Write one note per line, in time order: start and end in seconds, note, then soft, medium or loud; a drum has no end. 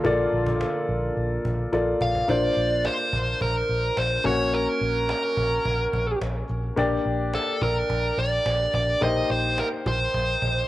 0.00 2.25 D3 medium
0.00 2.25 A#3 medium
0.00 1.69 A#3 medium
0.00 2.25 F4 medium
0.00 2.25 A4 medium
0.04 0.25 A#1 loud
0.04 1.69 F4 medium
0.04 1.70 A4 medium
0.04 1.70 D5 medium
0.04 cajon bass loud
0.33 0.63 A#1 medium
0.33 cajon slap soft
0.46 cajon bass loud
0.61 cajon slap loud
0.75 cajon slap soft
0.89 1.09 A#1 medium
0.89 cajon slap soft
1.17 1.37 A#1 loud
1.17 cajon slap medium
1.45 1.65 A#1 loud
1.45 cajon bass medium
1.59 cajon slap soft
1.72 1.93 A#1 medium
1.72 2.26 A#3 medium
1.72 2.28 F4 medium
1.72 2.29 A4 medium
1.72 2.29 D5 medium
1.72 cajon slap medium
2.01 2.21 A#1 medium
2.01 2.27 F5 medium
2.01 cajon bass medium
2.15 cajon bass medium
2.28 2.49 A#1 medium
2.28 4.21 A#3 medium
2.28 4.21 D4 medium
2.28 4.21 F4 medium
2.28 4.22 C5 medium
2.28 2.87 D5 loud
2.28 cajon bass loud
2.43 cajon slap soft
2.57 2.87 A#1 medium
2.57 cajon slap soft
2.71 cajon slap soft
2.85 3.41 C5 medium
2.85 cajon slap loud
2.99 cajon slap soft
3.13 3.33 A#1 loud
3.13 cajon bass medium
3.27 cajon slap soft
3.41 3.61 A#1 loud
3.41 3.99 A#4 medium
3.41 cajon bass medium
3.41 cajon slap medium
3.55 cajon slap soft
3.69 3.89 A#1 medium
3.69 cajon slap soft
3.97 4.17 A#1 medium
3.97 4.26 C5 medium
3.97 cajon slap loud
4.11 cajon slap soft
4.24 4.66 A#1 medium
4.24 6.45 A#3 medium
4.24 6.45 C#4 medium
4.24 6.46 F#4 medium
4.24 4.54 C#5 medium
4.24 6.46 C#5 medium
4.24 cajon bass loud
4.39 cajon slap soft
4.54 5.09 A#4 medium
4.81 5.12 A#1 medium
4.81 cajon slap soft
5.09 6.18 A#4 medium
5.09 cajon slap loud
5.23 cajon slap soft
5.37 5.57 A#1 medium
5.37 cajon bass medium
5.51 cajon slap soft
5.65 5.86 A#1 loud
5.65 cajon bass medium
5.65 cajon slap medium
5.79 cajon slap soft
5.93 6.14 A#1 medium
5.93 cajon bass medium
6.07 cajon slap soft
6.21 6.42 A#1 medium
6.21 cajon slap loud
6.36 cajon slap soft
6.50 6.70 A#1 loud
6.63 cajon slap soft
6.76 6.98 A#1 medium
6.76 8.97 A#3 medium
6.76 8.98 D4 medium
6.76 8.98 G4 medium
6.76 8.98 D5 medium
6.76 cajon bass loud
6.91 cajon slap soft
7.05 7.36 A#1 loud
7.05 cajon slap soft
7.20 cajon slap soft
7.34 7.62 A4 medium
7.34 cajon slap loud
7.48 cajon slap soft
7.62 7.82 A#1 medium
7.62 8.20 A#4 medium
7.62 cajon bass medium
7.76 cajon slap soft
7.90 8.10 A#1 loud
7.90 cajon bass medium
7.90 cajon slap medium
8.04 cajon slap soft
8.18 8.38 A#1 medium
8.18 8.74 D5 medium
8.18 cajon slap soft
8.32 cajon slap soft
8.46 8.66 A#1 medium
8.46 cajon slap loud
8.60 cajon slap soft
8.74 8.94 A#1 medium
8.74 9.00 D5 medium
8.74 cajon bass medium
8.88 cajon slap soft
9.01 9.22 A#1 loud
9.01 10.68 A#3 medium
9.01 10.68 D#4 medium
9.01 10.68 G4 medium
9.01 10.68 C5 medium
9.01 9.31 D#5 loud
9.01 cajon bass loud
9.16 cajon slap soft
9.30 9.60 A#1 medium
9.30 9.59 C5 medium
9.30 cajon slap soft
9.58 9.67 A#4 medium
9.58 cajon slap loud
9.72 cajon slap soft
9.86 10.06 A#1 loud
9.86 10.68 C5 medium
9.86 cajon bass medium
10.00 cajon slap soft
10.14 10.34 A#1 loud
10.14 cajon bass medium
10.14 cajon slap soft
10.28 cajon slap soft
10.42 10.62 A#1 medium
10.42 cajon bass medium
10.56 cajon slap soft